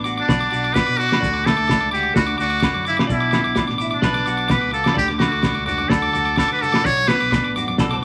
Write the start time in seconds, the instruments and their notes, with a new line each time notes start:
Already playing: fingered electric bass A1, clean electric guitar B3 D4
0.04 clean electric guitar F#4 D6, maracas
0.17 muted trumpet D4, clean electric guitar D6
0.28 fingered electric bass B1, clean electric guitar D5, muted clean electric guitar stroke, kick, snare, low agogo, maracas
0.41 clean electric guitar D6
0.51 fingered electric bass B1, clean electric guitar F#4 D6, maracas
0.64 clean electric guitar D6
0.74 clean electric guitar D4 D6, muted trumpet B4, kick, snare, low agogo, maracas
0.87 fingered electric bass B2, clean electric guitar D6
0.97 clean electric guitar D4 D6, muted trumpet F#4, maracas
1.09 clean electric guitar D6, snare
1.13 low agogo
1.21 fingered electric bass D2, clean electric guitar D3 D5, kick, maracas
1.34 clean electric guitar D6
1.44 clean electric guitar A3 D6, muted trumpet A4, snare, low agogo, maracas
1.57 fingered electric bass D2, clean electric guitar D6
1.67 clean electric guitar D6, kick, snare, low agogo, maracas
1.72 clean electric guitar D4
1.81 fingered electric bass C#2, clean electric guitar D6
1.91 clean electric guitar F#4 D6, muted trumpet G4, maracas
2.03 clean electric guitar D6
2.14 fingered electric bass D2, muted trumpet F#4, clean electric guitar A4, kick, snare, low agogo, maracas
2.19 clean electric guitar D4
2.27 clean electric guitar D6
2.38 fingered electric bass D2, clean electric guitar D4 D6, muted trumpet F#4, maracas
2.50 clean electric guitar D6
2.60 clean electric guitar D6, kick, snare, low agogo, maracas
2.64 clean electric guitar D3
2.74 fingered electric bass F#2, clean electric guitar D6
2.85 clean electric guitar C#3 D6, muted trumpet E4, maracas
2.97 clean electric guitar D6, snare, low agogo
3.07 fingered electric bass B1, clean electric guitar B2 D5, kick, maracas
3.12 muted trumpet E4
3.20 clean electric guitar D6
3.31 clean electric guitar D6, snare, low agogo, maracas
3.44 fingered electric bass B1, clean electric guitar D6
3.55 clean electric guitar D4 D6, kick, snare, low agogo, maracas
3.67 fingered electric bass A1, clean electric guitar D6, snare
3.78 clean electric guitar E4 D6, maracas
3.91 muted trumpet D4, clean electric guitar D6
4.02 fingered electric bass B1, clean electric guitar B4 D5, kick, snare, low agogo, maracas
4.14 clean electric guitar D6, snare
4.26 fingered electric bass B1, clean electric guitar F#4 D6, maracas
4.37 clean electric guitar D6
4.48 clean electric guitar B2 D6, muted trumpet B4, kick, snare, low agogo, maracas
4.61 fingered electric bass C#2, clean electric guitar D6
4.71 clean electric guitar C#3 D6, muted trumpet A4, maracas
4.84 clean electric guitar D6, snare, low agogo
4.94 fingered electric bass D2, clean electric guitar D3 D5, muted trumpet G4, kick
4.99 maracas
5.08 clean electric guitar D6, snare
5.19 clean electric guitar A3 D6, muted trumpet F#4, snare, low agogo, maracas
5.32 fingered electric bass D2, clean electric guitar D6
5.42 clean electric guitar D4 D6, kick, snare, low agogo, maracas
5.55 fingered electric bass C#2, clean electric guitar D6
5.66 clean electric guitar D4 D6, muted trumpet F#4, high conga, low conga, maracas
5.78 clean electric guitar D6, high conga
5.89 fingered electric bass D2, clean electric guitar F#4 D5, muted trumpet A4, kick, snare, low agogo
5.93 maracas
6.02 clean electric guitar D6, low conga
6.13 fingered electric bass D2, clean electric guitar F#4 D6, high conga, maracas
6.25 clean electric guitar D6
6.36 clean electric guitar D4 D6, muted trumpet A4, kick, snare, low agogo, maracas
6.48 fingered electric bass D3, clean electric guitar D6
6.53 muted trumpet B4
6.59 clean electric guitar F#4 D6, muted trumpet A4, low conga, maracas
6.72 clean electric guitar D6, snare, high conga, low agogo
6.84 fingered electric bass B1, muted trumpet C#5, clean electric guitar D5, muted clean electric guitar stroke, kick, maracas
6.97 muted clean electric guitar stroke
7.07 clean electric guitar B3 D6, muted trumpet B4, snare, low agogo, maracas
7.20 fingered electric bass B1, clean electric guitar D6
7.31 clean electric guitar D4 D6, kick, snare, low agogo, maracas
7.44 fingered electric bass A1, clean electric guitar D6
7.55 clean electric guitar F#4 D6, high conga, maracas
7.68 clean electric guitar D6, high conga
7.78 fingered electric bass B1, clean electric guitar A4 D5, kick, snare, low agogo, maracas
7.91 clean electric guitar B4 D6, low conga